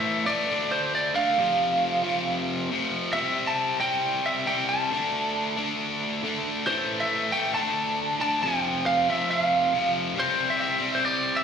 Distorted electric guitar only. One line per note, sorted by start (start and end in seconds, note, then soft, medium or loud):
0.00 0.24 A2 medium
0.00 0.25 E3 medium
0.00 0.25 A3 loud
0.26 0.47 A2 medium
0.26 0.48 E3 medium
0.26 0.49 A3 medium
0.47 1.13 D3 medium
0.47 1.14 A3 loud
0.47 1.13 D4 loud
1.14 1.37 D3 medium
1.14 1.36 A3 medium
1.14 1.35 D4 medium
1.37 2.02 F2 medium
1.37 2.03 C3 loud
1.37 2.02 F3 loud
2.03 2.68 F2 medium
2.03 2.69 C3 medium
2.03 2.68 F3 medium
2.70 3.13 F2 medium
2.70 3.13 C3 medium
2.70 3.14 F3 loud
3.14 3.79 C3 loud
3.14 3.80 G3 loud
3.14 3.79 C4 loud
3.81 4.45 C3 medium
3.81 4.46 G3 medium
3.81 4.45 C4 medium
4.46 4.89 C3 medium
4.46 4.90 G3 medium
4.46 4.90 C4 loud
4.91 5.55 D3 loud
4.91 5.58 A3 loud
4.91 5.55 D4 loud
5.57 6.21 D3 medium
5.57 6.24 A3 medium
5.57 6.21 D4 medium
6.23 6.65 D3 medium
6.23 6.68 A3 medium
6.23 6.67 D4 medium
6.66 7.31 A2 medium
6.66 7.32 E3 medium
6.66 7.32 A3 loud
7.33 7.54 A2 medium
7.33 7.54 E3 medium
7.33 7.56 A3 medium
7.54 8.19 D3 medium
7.54 8.19 A3 medium
7.54 8.19 D4 loud
8.20 8.42 D3 medium
8.20 8.41 A3 medium
8.20 8.41 D4 medium
8.43 9.06 F2 medium
8.43 9.07 C3 loud
8.43 9.07 F3 loud
9.08 9.71 F2 medium
9.08 9.72 C3 medium
9.08 9.72 F3 medium
9.72 10.15 F2 medium
9.72 10.14 C3 medium
9.72 10.16 F3 medium
10.15 10.80 C3 medium
10.15 10.80 G3 loud
10.15 10.79 C4 loud
10.80 11.44 C3 medium
10.80 11.44 G3 medium
10.80 11.44 C4 medium